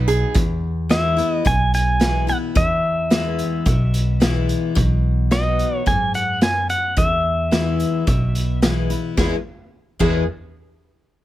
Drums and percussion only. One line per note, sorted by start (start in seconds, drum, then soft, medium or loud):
0.08 closed hi-hat medium
0.35 kick loud
0.35 closed hi-hat medium
0.90 snare loud
0.90 closed hi-hat medium
1.18 closed hi-hat medium
1.46 kick loud
1.46 closed hi-hat medium
1.74 closed hi-hat medium
2.01 snare loud
2.01 closed hi-hat medium
2.28 closed hi-hat soft
2.56 kick loud
2.56 closed hi-hat medium
3.11 snare loud
3.11 closed hi-hat medium
3.39 closed hi-hat medium
3.66 kick loud
3.66 closed hi-hat medium
3.94 closed hi-hat medium
4.22 snare loud
4.22 closed hi-hat medium
4.49 closed hi-hat medium
4.76 kick loud
4.76 closed hi-hat medium
5.31 snare medium
5.31 closed hi-hat medium
5.59 closed hi-hat medium
5.86 kick loud
5.86 closed hi-hat medium
6.14 closed hi-hat medium
6.42 snare loud
6.42 closed hi-hat medium
6.70 closed hi-hat medium
6.97 kick loud
6.97 closed hi-hat medium
7.52 snare loud
7.52 closed hi-hat medium
7.80 closed hi-hat medium
8.07 kick loud
8.07 closed hi-hat medium
8.35 closed hi-hat medium
8.62 snare loud
8.62 closed hi-hat medium
8.90 closed hi-hat medium
9.18 kick loud
9.18 snare medium
10.00 kick medium
10.00 crash medium